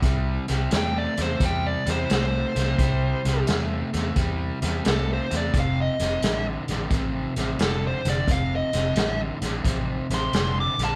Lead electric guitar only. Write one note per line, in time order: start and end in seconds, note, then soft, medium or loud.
0.77 0.97 G5 loud
0.98 1.19 D5 medium
1.22 1.43 C5 medium
1.45 1.66 G5 medium
1.67 1.88 D5 medium
1.90 2.11 C5 medium
2.14 3.46 C5 medium
4.90 5.10 A4 medium
5.13 5.33 C5 medium
5.37 5.56 D5 medium
5.60 5.79 F5 medium
5.81 6.46 D#5 medium
7.63 7.84 A4 medium
7.87 8.07 C5 medium
8.10 8.30 D5 medium
8.32 8.52 F5 medium
8.56 9.20 D#5 medium
10.14 10.57 C6 loud
10.60 10.81 D6 medium
10.84 10.96 A5 medium